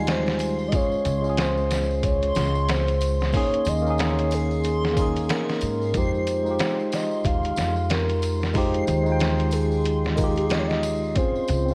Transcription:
Already playing: upright bass D#2, tine electric piano G3 G#3 D#4 F4 G4, soft synth lead G#5, synth texture C6
0.07 soft synth lead C5, snare, closed hi-hat, tambourine, triangle
0.26 snare, tambourine
0.39 closed hi-hat, tambourine
0.59 tambourine
0.68 tine electric piano G#3, soft synth lead D#5, tambourine
0.72 tine electric piano C#4 F4 G#4, soft synth lead C#5, kick, closed hi-hat
0.91 tambourine
1.05 upright bass C#2, closed hi-hat, tambourine
1.21 tine electric piano G#3 C#4, tambourine
1.26 tine electric piano F4 G#4
1.37 soft synth lead C5, snare, closed hi-hat, tambourine
1.57 tambourine
1.70 snare, closed hi-hat, tambourine
1.91 tambourine
2.03 soft synth lead C#5, kick, closed hi-hat, tambourine
2.22 closed hi-hat, tambourine
2.35 upright bass C#2, snare, closed hi-hat, tambourine
2.55 tambourine
2.68 soft synth lead C5, snare, closed hi-hat, tambourine
2.87 closed hi-hat, tambourine
3.01 closed hi-hat, tambourine
3.20 snare, tambourine
3.33 tine electric piano A#3 C#4 D#4, soft synth lead C#5, kick, open hi-hat, tambourine
3.37 tine electric piano G#4
3.52 closed hi-hat, tambourine
3.65 upright bass D#2, soft synth lead D#5, closed hi-hat, tambourine
3.82 tine electric piano A#3 C#4
3.87 tine electric piano D#4 G#4, tambourine
3.98 soft synth lead C#5, snare, closed hi-hat, tambourine
4.18 closed hi-hat, tambourine
4.31 soft synth lead G#4, closed hi-hat, tambourine, triangle
4.51 tambourine
4.63 closed hi-hat, tambourine
4.83 snare, tambourine
4.93 tine electric piano A#3 C#4, kick, tambourine
4.97 tine electric piano D#4, closed hi-hat, triangle
5.02 tine electric piano G#4
5.16 closed hi-hat, tambourine
5.29 soft synth lead A#4, snare, closed hi-hat, tambourine, triangle
5.49 snare, tambourine
5.61 upright bass G#2, closed hi-hat, tambourine
5.81 tambourine
5.93 upright bass F2, tine electric piano G#3 D#4 F4, kick, closed hi-hat, tambourine
5.97 tine electric piano G4, soft synth lead C5
6.14 tambourine
6.26 closed hi-hat, tambourine
6.42 tine electric piano G#3 D#4, tambourine
6.48 tine electric piano F4 G4
6.59 snare, closed hi-hat, tambourine
6.80 tambourine
6.92 soft synth lead D#5, snare, closed hi-hat, tambourine
7.11 tambourine
7.24 upright bass D#2, soft synth lead F5, kick, closed hi-hat, tambourine
7.43 closed hi-hat, tambourine
7.56 upright bass F2, snare, closed hi-hat, tambourine
7.76 tambourine
7.89 soft synth lead A#4, snare, closed hi-hat, tambourine
8.09 closed hi-hat, tambourine
8.22 closed hi-hat, tambourine
8.41 snare, tambourine
8.54 tine electric piano G#3 D#4 F4, soft synth lead C5, kick, open hi-hat, tambourine
8.58 tine electric piano G4
8.74 closed hi-hat, tambourine
8.87 upright bass D#2, closed hi-hat, tambourine
9.03 tine electric piano G#3 D#4, tambourine
9.09 tine electric piano F4 G5
9.20 snare, closed hi-hat, tambourine
9.38 closed hi-hat, tambourine
9.51 soft synth lead G#4, closed hi-hat, tambourine, triangle
9.72 tambourine
9.84 closed hi-hat, tambourine
10.04 snare, tambourine
10.15 tine electric piano G#3 D#4, soft synth lead A#4, kick, closed hi-hat, tambourine, triangle
10.20 tine electric piano F4 G4
10.26 soft synth lead G#4
10.36 soft synth lead G4, closed hi-hat, tambourine
10.45 soft synth lead G#4
10.49 soft synth lead D#5, snare, closed hi-hat, tambourine, triangle
10.58 soft synth lead C#5
10.68 soft synth lead D#5, snare, tambourine
10.83 closed hi-hat, tambourine
11.03 tambourine
11.15 tine electric piano C4 C#4 F4 G#4, soft synth lead C5, kick, closed hi-hat, tambourine
11.36 tambourine
11.48 upright bass C#2, closed hi-hat, tambourine
11.66 tine electric piano C4 C#4, tambourine
11.71 tine electric piano F4

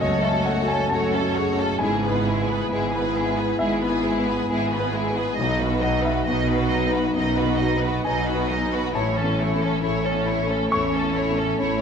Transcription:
Already playing: grand piano F#2 C#4 F#4 A4 E5 F#5, harp F#2 C#3 C#4 F#4 A4 C#5 A5, french horn section A3 C#4
0.00 double bass section F#1, grand piano C#2 D#5, cello section F#2, viola section A3, violin section F#4 C#5, harp F#5
0.22 violin section A4, grand piano E5, harp A5
0.26 viola section C#4
0.32 grand piano C#4 F#4 A4
0.44 viola section A3, violin section C#5, grand piano F#5, harp F#5
0.48 violin section F#4
0.62 grand piano C#4 F#4 A4
0.67 viola section C#4, violin section A4, harp C#5, grand piano G#5
0.89 double bass section F#1, cello section F#2, viola section A3, grand piano C#4 F#4 A4 A5, harp F#4, violin section F#4 C#5
1.13 harp C#4, viola section C#4, violin section A4
1.21 grand piano C#4 F#4 A4
1.35 harp C#3, viola section A3, violin section F#4 C#5
1.52 grand piano C#4 F#4 A4
1.57 harp C#4, viola section C#4, violin section A4
1.79 double bass section G#1, harp G#2, grand piano G#2 G#5, cello section G#2, viola section G#3, french horn section B3 E4, violin section E4 G#4
2.02 harp G#3, viola section B3, violin section G#4 B4
2.11 grand piano B3 E4 B4
2.25 viola section G#3, harp B3, violin section E4 G#4
2.42 grand piano B3 E4 B4
2.47 viola section B3, harp E4, violin section G#4 B4
2.70 double bass section G#1, cello section G#2, viola section G#3, grand piano B3 E4 B4, violin section E4 G#4, harp B4
2.92 viola section B3, harp E4, violin section G#4 B4
3.00 grand piano B3 E4 B4
3.15 viola section G#3, violin section E4 G#4, harp E5
3.30 grand piano B3 E4 B4
3.37 viola section B3, violin section G#4 B4, harp B5
3.59 double bass section G#1, grand piano G#2 E5, cello section G#2, viola section G#3, violin section E4 G#4, harp E5
3.81 viola section B3, violin section G#4 B4, harp B5
3.90 grand piano B3 E4 B4
4.03 viola section G#3, violin section G#4, harp E5
4.07 violin section E4
4.19 grand piano B3 E4 B4
4.26 viola section B3, violin section B4, harp B4
4.30 violin section G#4
4.48 double bass section G#1, cello section G#2, viola section G#3, grand piano B3 E4 B4, harp E4, violin section G#4
4.52 violin section E4
4.70 harp B3, viola section B3, violin section B4
4.75 violin section G#4
4.79 grand piano B3 E4 B4
4.92 harp G#3, viola section G#3, violin section G#4
4.96 violin section E4
5.09 grand piano B3 E4 B4
5.14 harp B3, viola section B3, violin section B4
5.19 violin section G#4
5.35 double bass section B1, harp B2, cello section B2, viola section F#3, french horn section B3 D#4, violin section D#5, grand piano D#5
5.40 grand piano B1, violin section D#4
5.59 harp F#3, viola section B3, violin section F#4 B4
5.69 grand piano B3 D#4 B4
5.81 viola section F#3, harp B3, violin section D#5, grand piano F#5
5.86 violin section D#4
5.99 grand piano B3 D#4 B4
6.03 viola section B3, harp D#4, violin section B4, grand piano E5
6.08 violin section F#4
6.26 double bass section B1, cello section B2, viola section F#3, grand piano B3 D#4 B4 F#5, harp B4, violin section D#5
6.30 violin section D#4
6.48 viola section B3, harp D#4, violin section F#4 B4
6.57 grand piano B3 D#4 B4
6.70 viola section F#3, violin section D#4 D#5, harp D#5
6.87 grand piano B3 D#4 B4
6.91 viola section B3, violin section F#4 B4, harp B5
7.14 double bass section B1, grand piano F#2, cello section B2, viola section F#3, violin section D#4 D#5, harp D#5
7.36 viola section B3, violin section F#4 B4, harp B5
7.46 grand piano B3 D#4 B4
7.57 viola section F#3, violin section D#5, harp D#5
7.62 violin section D#4
7.76 grand piano B3 D#4 B4, violin section B4
7.81 viola section B3, violin section F#4, harp B4
8.04 double bass section B1, cello section B2, viola section F#3, grand piano B3 D#4 B4 G#5, harp D#4, violin section D#4 D#5
8.26 harp B3, viola section B3, violin section F#4 B4
8.35 grand piano B3 D#4 B4
8.49 harp F#3, viola section F#3, violin section D#4 D#5
8.65 grand piano B3 D#4 B4
8.71 viola section B3, harp B3, violin section F#4 B4
8.93 double bass section A1, grand piano A1 A5, harp A2, cello section A2, viola section A3, french horn section A3 C#4, violin section E4 C#5
9.16 harp E3, viola section C#4, violin section C#4 A4
9.23 grand piano C#4 E4 A4
9.38 viola section A3, harp C#4, violin section E4 C#5
9.54 grand piano C#4 E4 A4
9.60 viola section C#4, violin section C#4 A4, harp E4
9.82 double bass section A1, cello section A2, viola section A3, grand piano C#4 E4 A4, violin section E4 C#5, harp A4
10.03 violin section C#4 A4, viola section C#4, harp C#5
10.12 grand piano C#4 E4 A4
10.25 viola section A3, violin section E4 C#5, harp E5
10.41 grand piano C#4 E4 A4
10.47 violin section C#4 A4, viola section C#4, harp A5
10.69 double bass section A1, grand piano E2 C#6, cello section A2, viola section A3, violin section E4 C#5, harp E5
10.90 violin section C#4, harp A5
10.94 viola section C#4, violin section A4
11.02 grand piano C#4 E4 A4
11.13 violin section E4 C#5, harp E5
11.17 viola section A3
11.30 grand piano C#4 E4 A4
11.35 violin section C#4 A4, viola section C#4, harp C#5
11.59 double bass section A1, cello section A2, viola section A3, grand piano C#4 E4 A4, harp E4, violin section E4 C#5

